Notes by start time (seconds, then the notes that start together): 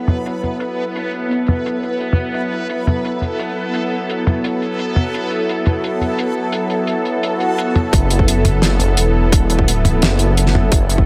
Already playing: F#3 B3 E4 A4 B4
0.08 closed hi-hat, mid tom
0.26 closed hi-hat
0.43 closed hi-hat, mid tom
0.60 closed hi-hat
0.96 closed hi-hat
1.13 closed hi-hat
1.31 closed hi-hat
1.47 closed hi-hat, mid tom
1.66 closed hi-hat
1.83 closed hi-hat
2.00 closed hi-hat
2.13 mid tom
2.34 A4, closed hi-hat
2.52 closed hi-hat
2.69 closed hi-hat
2.87 closed hi-hat, mid tom
3.05 closed hi-hat
3.22 closed hi-hat, mid tom
3.39 closed hi-hat
3.74 closed hi-hat
4.10 closed hi-hat
4.27 closed hi-hat, mid tom
4.44 closed hi-hat
4.62 closed hi-hat
4.79 closed hi-hat
4.96 mid tom
5.14 closed hi-hat
5.31 closed hi-hat
5.49 closed hi-hat
5.66 closed hi-hat, mid tom
5.84 closed hi-hat
6.01 closed hi-hat, mid tom
6.19 closed hi-hat
6.52 closed hi-hat
6.70 closed hi-hat
6.87 closed hi-hat
7.05 closed hi-hat
7.23 closed hi-hat, swell
7.40 closed hi-hat
7.58 closed hi-hat
7.75 closed hi-hat, mid tom
7.93 F#1, kick, closed hi-hat
8.10 closed hi-hat
8.19 kick
8.28 closed hi-hat
8.45 closed hi-hat, mid tom
8.62 snare, closed hi-hat
8.79 closed hi-hat, mid tom
8.97 E1, closed hi-hat
9.32 kick, closed hi-hat
9.50 closed hi-hat
9.59 kick
9.68 closed hi-hat
9.85 closed hi-hat, mid tom
10.02 F#1, snare, closed hi-hat
10.19 closed hi-hat
10.37 closed hi-hat
10.46 snare
10.55 mid tom
10.72 F#1, kick, closed hi-hat
10.89 closed hi-hat
10.98 kick